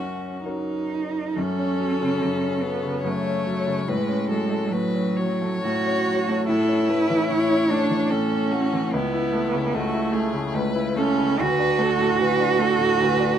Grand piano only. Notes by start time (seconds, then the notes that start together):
Already playing: F#2 F#3 C#4 A#4
0.45 F#3 C#4 A#4
1.36 F#2
1.59 C#4
1.80 F#3
2.01 C#3
2.21 F#2
2.43 C#4
2.63 F#3
2.83 C#3
3.04 F#2
3.26 C#4
3.46 F#3
3.67 C#3
3.88 A2
4.08 C#4
4.28 F#3
4.49 A3
4.72 A2
4.94 C#4
5.18 F#3
5.42 A3
5.64 A2
5.87 C#4
6.07 F#3
6.28 A3
6.49 A2
6.68 C#4
6.89 A3
7.10 E3
7.30 A2
7.50 C#4
7.71 A3
7.90 E3
8.10 A2
8.31 C#4
8.52 A3
8.73 E3
8.93 C#2
9.13 E4
9.33 A3
9.53 C#3
9.74 C#2
9.94 E4
10.12 A3
10.33 C#3
10.54 C#2
10.75 E4
10.96 A3
11.19 C#3
11.38 D2
11.59 D4
11.79 A3
11.99 A2
12.18 D2
12.40 D4
12.59 A3
12.78 A2
13.00 D2
13.19 D4